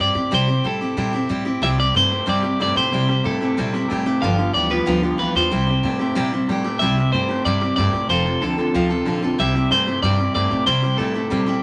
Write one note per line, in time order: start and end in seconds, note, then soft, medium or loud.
0.00 0.13 G2 medium
0.00 0.15 G3 medium
0.00 0.16 C4 medium
0.00 0.15 E4 medium
0.00 0.14 G4 medium
0.00 0.34 D5 loud
0.15 0.29 A2 medium
0.15 0.31 C4 soft
0.15 0.31 E4 medium
0.15 0.31 G4 medium
0.31 0.48 C3 medium
0.31 0.58 C3 medium
0.31 0.48 G3 medium
0.31 0.48 C4 medium
0.31 0.47 E4 medium
0.31 0.46 G4 medium
0.31 0.67 C5 medium
0.48 0.63 C4 soft
0.48 0.64 E4 medium
0.48 0.64 G4 soft
0.64 0.91 A2 medium
0.64 0.81 G3 medium
0.64 0.81 C4 medium
0.64 0.81 E4 medium
0.64 0.80 G4 medium
0.64 1.27 A4 medium
0.81 0.96 C4 soft
0.81 0.97 E4 medium
0.81 0.97 G4 soft
0.97 1.24 A#2 loud
0.97 1.13 C3 medium
0.97 1.14 G3 medium
0.97 1.14 C4 medium
0.97 1.13 E4 medium
0.97 1.12 G4 medium
1.13 1.29 C4 medium
1.13 1.29 E4 soft
1.13 1.30 G4 medium
1.29 1.56 A2 medium
1.29 1.46 G3 medium
1.29 1.46 C4 medium
1.29 1.45 E4 medium
1.29 1.44 G4 medium
1.45 1.61 C4 medium
1.45 1.61 E4 medium
1.45 1.62 G4 medium
1.62 1.88 C2 loud
1.62 1.78 C3 medium
1.62 1.77 C3 medium
1.62 1.79 G3 medium
1.62 1.77 G3 medium
1.62 1.79 C4 medium
1.62 1.78 E4 medium
1.62 1.77 G4 medium
1.62 1.68 E5 loud
1.78 1.93 C3 medium
1.78 1.94 G3 medium
1.78 1.94 C4 soft
1.78 1.95 E4 soft
1.78 1.95 G4 medium
1.78 1.96 D5 loud
1.94 2.21 G2 medium
1.94 2.09 C3 medium
1.94 2.11 G3 medium
1.94 2.10 A3 medium
1.94 2.12 C4 medium
1.94 2.11 E4 medium
1.94 2.09 G4 medium
1.94 2.29 C5 medium
2.10 2.26 C3 medium
2.10 2.26 A3 medium
2.10 2.26 C4 soft
2.10 2.27 E4 soft
2.10 2.27 G4 soft
2.26 2.54 G2 medium
2.26 2.43 C3 medium
2.26 2.42 C3 medium
2.26 2.43 G3 medium
2.26 2.42 G3 loud
2.26 2.44 C4 medium
2.26 2.43 E4 medium
2.26 2.41 G4 medium
2.26 2.61 D5 medium
2.43 2.58 C3 medium
2.43 2.58 G3 medium
2.43 2.59 C4 soft
2.43 2.60 E4 medium
2.43 2.59 G4 medium
2.60 2.73 G2 medium
2.60 2.75 C3 medium
2.60 2.76 G3 medium
2.60 2.75 A3 medium
2.60 2.77 C4 medium
2.60 2.76 E4 medium
2.60 2.75 G4 medium
2.60 2.76 D5 loud
2.76 2.89 A2 medium
2.76 2.91 C3 medium
2.76 2.91 A3 medium
2.76 2.92 C4 soft
2.76 2.93 E4 medium
2.76 2.92 G4 medium
2.76 3.27 C5 medium
2.92 3.07 C3 medium
2.92 3.19 C3 medium
2.92 3.09 C3 medium
2.92 3.07 G3 medium
2.92 3.09 G3 medium
2.92 3.09 C4 medium
2.92 3.08 E4 medium
2.92 3.07 G4 medium
3.08 3.23 C3 medium
3.08 3.23 G3 medium
3.08 3.24 C4 soft
3.08 3.25 E4 soft
3.08 3.25 G4 medium
3.24 3.51 A2 medium
3.24 3.39 C3 loud
3.24 3.41 G3 medium
3.24 3.39 A3 loud
3.24 3.41 C4 medium
3.24 3.41 E4 medium
3.24 3.39 G4 medium
3.24 3.86 A4 medium
3.40 3.55 C3 medium
3.40 3.55 A3 medium
3.40 3.57 C4 soft
3.40 3.57 E4 medium
3.40 3.57 G4 medium
3.57 3.84 A#2 medium
3.57 3.71 C3 medium
3.57 3.73 C3 medium
3.57 3.72 G3 medium
3.57 3.74 G3 medium
3.57 3.74 C4 medium
3.57 3.74 E4 medium
3.57 3.73 G4 medium
3.73 3.88 C3 medium
3.73 3.88 G3 medium
3.73 3.90 C4 medium
3.73 3.90 E4 medium
3.73 3.90 G4 medium
3.89 4.17 A2 medium
3.89 4.04 C3 medium
3.89 4.06 G3 medium
3.89 4.04 A3 loud
3.89 4.06 C4 medium
3.89 4.06 E4 medium
3.89 4.05 G4 medium
4.06 4.20 C3 medium
4.06 4.21 A3 medium
4.06 4.23 C4 medium
4.06 4.23 E4 medium
4.06 4.22 G4 medium
4.21 4.49 G1 loud
4.21 4.36 G2 medium
4.21 4.39 G2 medium
4.21 4.37 D3 medium
4.21 4.39 D3 medium
4.21 4.39 F3 medium
4.21 4.38 B3 medium
4.21 4.37 F4 medium
4.21 4.37 G4 medium
4.21 4.54 F5 loud
4.38 4.52 G2 medium
4.38 4.53 D3 medium
4.38 4.53 F3 soft
4.38 4.54 B3 soft
4.38 4.54 F4 soft
4.38 4.54 G4 medium
4.53 4.80 D2 medium
4.53 4.68 G2 medium
4.53 4.69 E3 loud
4.53 4.70 F3 medium
4.53 4.70 B3 medium
4.53 4.70 F4 medium
4.53 4.69 G4 medium
4.53 4.71 D5 medium
4.70 4.85 G2 medium
4.70 4.85 E3 medium
4.70 4.86 F3 soft
4.70 4.86 B3 soft
4.70 4.86 F4 soft
4.70 4.86 G4 medium
4.70 5.01 B4 loud
4.86 5.13 D2 loud
4.86 5.03 G2 medium
4.86 5.01 G2 loud
4.86 5.03 D3 medium
4.86 5.01 D3 medium
4.86 5.03 F3 medium
4.86 5.03 B3 medium
4.86 5.02 F4 medium
4.86 5.01 G4 loud
5.02 5.17 G2 medium
5.02 5.18 D3 medium
5.02 5.17 F3 soft
5.02 5.18 B3 medium
5.02 5.19 F4 medium
5.02 5.19 G4 medium
5.18 5.32 D2 medium
5.18 5.34 G2 medium
5.18 5.34 E3 loud
5.18 5.35 F3 medium
5.18 5.35 B3 medium
5.18 5.35 F4 medium
5.18 5.34 G4 medium
5.18 5.36 B4 loud
5.35 5.48 E2 medium
5.35 5.50 G2 medium
5.35 5.51 E3 medium
5.35 5.51 F3 soft
5.35 5.51 B3 soft
5.35 5.52 F4 medium
5.35 5.51 G4 medium
5.35 6.45 C5 medium
5.50 5.78 C2 medium
5.50 5.67 C3 medium
5.50 5.66 C3 medium
5.50 5.68 G3 medium
5.50 5.67 G3 medium
5.50 5.68 C4 medium
5.50 5.67 E4 medium
5.50 5.66 G4 medium
5.67 5.83 C3 medium
5.67 5.83 G3 medium
5.67 5.82 C4 soft
5.67 5.83 E4 soft
5.67 5.84 G4 medium
5.83 6.10 A2 medium
5.83 5.99 C3 medium
5.83 6.00 G3 medium
5.83 5.99 A3 loud
5.83 6.00 C4 medium
5.83 6.00 E4 medium
5.83 5.98 G4 medium
5.99 6.15 C3 medium
5.99 6.15 A3 medium
5.99 6.15 C4 soft
5.99 6.15 E4 medium
5.99 6.16 G4 medium
6.15 6.43 A#2 medium
6.15 6.32 C3 medium
6.15 6.31 C3 medium
6.15 6.32 G3 medium
6.15 6.31 G3 medium
6.15 6.32 C4 medium
6.15 6.32 E4 loud
6.15 6.31 G4 loud
6.33 6.47 C3 medium
6.33 6.47 G3 medium
6.33 6.48 C4 soft
6.33 6.49 E4 medium
6.33 6.49 G4 medium
6.49 6.83 A2 medium
6.49 6.63 C3 medium
6.49 6.65 G3 medium
6.49 6.64 A3 loud
6.49 6.65 C4 medium
6.49 6.64 E4 medium
6.49 6.63 G4 medium
6.64 6.79 C3 medium
6.64 6.79 A3 medium
6.64 6.81 C4 soft
6.64 6.81 E4 medium
6.64 6.81 G4 medium
6.79 7.07 C2 medium
6.79 6.97 C3 medium
6.79 6.95 C3 medium
6.79 6.96 G3 medium
6.79 6.97 G3 medium
6.79 6.97 C4 medium
6.79 6.97 E4 medium
6.79 6.96 G4 medium
6.79 7.12 E5 loud
6.97 7.12 C3 medium
6.97 7.12 G3 medium
6.97 7.13 C4 soft
6.97 7.14 E4 soft
6.97 7.13 G4 soft
7.12 7.39 G2 medium
7.12 7.28 C3 medium
7.12 7.29 G3 medium
7.12 7.28 A3 medium
7.12 7.30 C4 medium
7.12 7.29 E4 medium
7.12 7.27 G4 medium
7.12 7.45 C5 medium
7.29 7.44 C3 medium
7.29 7.44 A3 medium
7.29 7.45 C4 soft
7.29 7.45 E4 soft
7.29 7.45 G4 soft
7.45 7.71 G2 loud
7.45 7.61 C3 medium
7.45 7.60 C3 medium
7.45 7.62 G3 medium
7.45 7.60 G3 medium
7.45 7.62 C4 medium
7.45 7.62 E4 medium
7.45 7.60 G4 medium
7.45 7.75 D5 loud
7.61 7.76 C3 medium
7.61 7.76 G3 medium
7.61 7.77 C4 soft
7.61 7.78 E4 soft
7.61 7.77 G4 medium
7.76 7.91 G2 medium
7.76 7.92 C3 medium
7.76 7.93 G3 medium
7.76 7.92 A3 loud
7.76 7.94 C4 medium
7.76 7.93 E4 medium
7.76 7.92 G4 medium
7.76 8.10 D5 loud
7.93 8.06 A2 medium
7.93 8.08 C3 medium
7.93 8.08 A3 medium
7.93 8.08 C4 medium
7.93 8.10 E4 soft
7.93 8.09 G4 medium
8.09 8.35 F1 medium
8.09 8.24 F2 medium
8.09 8.24 C3 medium
8.09 8.26 F3 medium
8.09 8.26 C4 medium
8.09 8.25 F4 medium
8.09 8.24 A4 medium
8.09 8.43 C5 medium
8.25 8.40 F2 medium
8.25 8.40 C3 medium
8.25 8.41 C4 soft
8.25 8.42 F4 soft
8.25 8.41 A4 medium
8.41 8.68 D2 medium
8.41 8.56 F2 medium
8.41 8.56 D3 medium
8.41 8.58 F3 medium
8.41 8.58 C4 medium
8.41 8.58 F4 medium
8.41 9.02 A4 medium
8.41 8.56 A4 medium
8.58 8.72 F2 medium
8.58 8.72 D3 medium
8.58 8.74 C4 soft
8.58 8.74 F4 medium
8.58 8.74 A4 medium
8.74 9.00 D2 medium
8.74 8.88 F2 medium
8.74 8.88 C3 medium
8.74 8.90 F3 medium
8.74 8.90 C4 medium
8.74 8.90 F4 medium
8.74 8.89 A4 medium
8.90 9.04 F2 medium
8.90 9.05 C3 medium
8.90 9.05 C4 medium
8.90 9.06 F4 medium
8.90 9.06 A4 medium
9.06 9.32 A#1 medium
9.06 9.20 F2 medium
9.06 9.20 D3 loud
9.06 9.22 F3 medium
9.06 9.22 C4 medium
9.06 9.22 F4 medium
9.06 9.21 A4 medium
9.21 9.36 F2 medium
9.21 9.36 D3 medium
9.21 9.38 C4 medium
9.21 9.39 F4 medium
9.21 9.38 A4 medium
9.38 9.64 C2 loud
9.38 9.53 C3 medium
9.38 9.54 C3 medium
9.38 9.53 G3 loud
9.38 9.54 G3 medium
9.38 9.55 C4 medium
9.38 9.54 E4 medium
9.38 9.54 G4 medium
9.38 9.71 E5 loud
9.54 9.69 C3 medium
9.54 9.69 G3 medium
9.54 9.71 C4 soft
9.54 9.71 E4 soft
9.54 9.71 G4 medium
9.71 9.85 C3 medium
9.71 9.87 G3 medium
9.71 9.85 A3 loud
9.71 9.87 C4 medium
9.71 9.86 E4 medium
9.71 9.85 G4 medium
9.71 10.02 C5 loud
9.86 10.01 C3 medium
9.86 10.01 A3 medium
9.86 10.03 C4 soft
9.86 10.03 E4 medium
9.86 10.02 G4 medium
10.02 10.28 G2 medium
10.02 10.17 C3 medium
10.02 10.19 C3 medium
10.02 10.17 G3 loud
10.02 10.19 G3 medium
10.02 10.19 C4 medium
10.02 10.18 E4 medium
10.02 10.17 G4 medium
10.02 10.34 D5 loud
10.18 10.33 C3 medium
10.18 10.33 G3 medium
10.18 10.34 C4 soft
10.18 10.35 E4 soft
10.18 10.34 G4 medium
10.34 10.48 G2 medium
10.34 10.49 C3 medium
10.34 10.51 G3 medium
10.34 10.49 A3 loud
10.34 10.51 C4 medium
10.34 10.51 E4 medium
10.34 10.49 G4 medium
10.34 10.66 D5 medium
10.51 10.64 A2 medium
10.51 10.65 C3 medium
10.51 10.65 A3 medium
10.51 10.66 C4 soft
10.51 10.66 E4 medium
10.51 10.67 G4 medium
10.66 10.82 C3 medium
10.66 10.81 C3 medium
10.66 10.93 C3 medium
10.66 10.83 G3 medium
10.66 10.81 G3 medium
10.66 10.83 C4 medium
10.66 10.83 E4 medium
10.66 10.81 G4 medium
10.66 10.97 C5 medium
10.83 10.97 C3 medium
10.83 10.97 G3 medium
10.83 10.98 C4 soft
10.83 10.98 E4 soft
10.83 10.99 G4 medium
10.98 11.25 A2 medium
10.98 11.13 C3 medium
10.98 11.14 G3 medium
10.98 11.14 A3 medium
10.98 11.15 C4 medium
10.98 11.14 E4 medium
10.98 11.13 G4 medium
10.98 11.59 A4 medium
11.14 11.29 C3 medium
11.14 11.30 A3 medium
11.14 11.30 C4 soft
11.14 11.31 E4 medium
11.14 11.31 G4 medium
11.30 11.57 A#2 medium
11.30 11.47 C3 medium
11.30 11.45 C3 medium
11.30 11.47 G3 medium
11.30 11.46 G3 medium
11.30 11.47 C4 medium
11.30 11.46 E4 medium
11.30 11.45 G4 medium
11.46 11.61 C3 medium
11.46 11.61 G3 medium
11.46 11.62 C4 medium
11.46 11.62 E4 medium
11.46 11.63 G4 medium